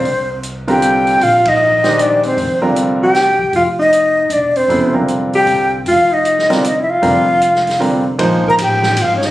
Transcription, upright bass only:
X:1
M:3/4
L:1/8
Q:"Swing" 1/4=155
K:Cm
V:1 name="Upright bass" clef=bass
C,,6 | B,,,6 | F,,,6 | F,,,4 =E,,,2 |
F,,,4 C,,2 | F,,,6 | F,,,6 | [K:Bbdor] B,,,2 =A,,,2 _A,,,2 |]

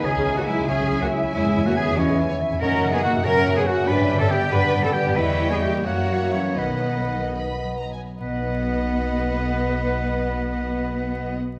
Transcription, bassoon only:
X:1
M:6/8
L:1/8
Q:3/8=91
K:B
V:1 name="Bassoon"
D3 C3 | C3 E3 | D3 C3- | C2 z B,3 |
=G,3 A,3 | B,4- B, z | B,6- | B,6 |]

